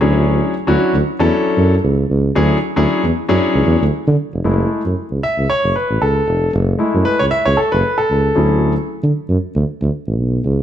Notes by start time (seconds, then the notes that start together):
0.01 D2 F#3 C#4 D4 E4 G#4
0.67 D2 F#3 C#4 D4 E4 F#4
0.94 D2
1.19 E2 F#3 C#4 D4 E4 A4
1.58 F#2
1.84 C#2
2.10 C#2
2.35 D2 F#3 C#4 D4 E4 G#4
2.76 D2 F#3 C#4 D4 E4 G#4
3.03 E2
3.29 F#2 F#3 C#4 D4 E4 G#4
3.55 C#2
3.66 E2
3.81 D2
4.07 D3
4.33 F1
4.44 F#1 G#3 A3 E4
4.85 F#2
5.11 C#2
5.23 E5
5.37 C#2
5.50 C#5
5.64 F#1
5.76 B4
5.90 A1
6.01 C#2 A4
6.27 F1
6.53 F#1
6.79 G#3 A3 E4
6.94 F#2
7.05 B4
7.19 C#2 C#5
7.31 E5
7.45 C#2 C#5
7.57 A4
7.72 F#1 B4
7.98 A4
8.10 C#2
8.35 D2 F#3 C#4 E4 G#4
9.03 D3
9.29 F#2
9.55 D2
9.81 D2
10.07 A1
10.18 B1
10.44 C#2